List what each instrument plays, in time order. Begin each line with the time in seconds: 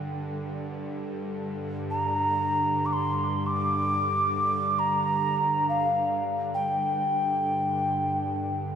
Already playing: synth drone G2 D3
1.90 ocarina A#5
2.86 ocarina D6
2.93 ocarina C6
3.47 ocarina D6
4.79 ocarina A#5
5.69 ocarina F5
6.54 ocarina G5